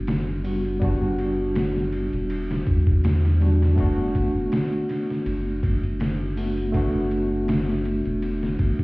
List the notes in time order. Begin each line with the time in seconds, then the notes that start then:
Already playing: F#1 G3 B3 D4 F#4
0.07 snare, ride
0.44 G3 B3 D4 F#4, open hi-hat
0.65 ride
0.80 G3 B3 D4, kick, ride
0.85 F#4
1.18 ride
1.55 snare, ride
1.76 snare
1.92 ride
2.13 E1, ride
2.30 ride
2.51 snare
2.67 E2, kick, ride
2.87 kick
3.04 snare, ride
3.25 snare
3.40 G3 B3 D4 F#4, snare, ride
3.62 snare
3.75 E1 A3 B3 D4, kick, ride
3.80 F#4
4.15 kick, ride
4.52 snare, ride
4.72 ride
4.89 snare, ride
5.10 snare
5.26 F#1, ride
5.63 kick, ride
5.83 ride
6.00 snare, ride
6.36 A3 B3 D4 F#4, open hi-hat
6.57 ride
6.72 A3 B3 D4, kick, ride
6.77 F#4
7.11 ride
7.48 snare, ride
7.69 snare
7.85 ride
8.05 E1, ride
8.22 ride
8.43 snare
8.59 kick, ride
8.79 D1, kick